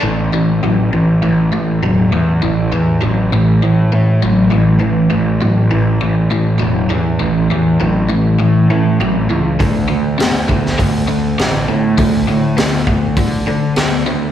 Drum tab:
HH |----------------|----------------|----------------|----------------|
SD |----------------|----------------|----------------|----------------|
BD |----------------|----------------|----------------|----------------|

HH |o---o---o---o---|o---o---o---o---|
SD |----o--o----o---|----o-------o---|
BD |o-----o-o-------|o-----o-o-------|